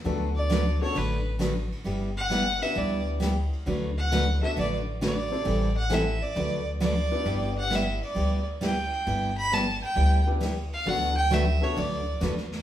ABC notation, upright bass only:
X:1
M:4/4
L:1/8
Q:"Swing" 1/4=133
K:D
V:1 name="Upright bass" clef=bass
D,,4 A,,,4 | G,,,4 D,,4 | D,,4 A,,,4 | A,,,4 D,,4 |
G,,,4 D,,4 | G,,,4 D,,4 | D,,4 D,,2 E,,2 |]